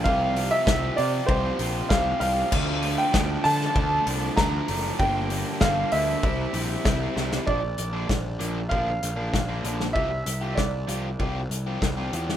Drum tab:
CC |----------------|x---------------|----------------|----------------|
HH |--o---o---o---o-|--o---o---o---o-|--o---o---o-----|--x---x---x---x-|
SD |----o-------o---|----o--o----o---|----o-------o-oo|----o-------o--o|
BD |o---o---o---o---|o---o---o---o---|o---o---o---o---|o---o---o---o---|

CC |----------------|
HH |--x---x---x---x-|
SD |----o-------o--o|
BD |o---o---o---o---|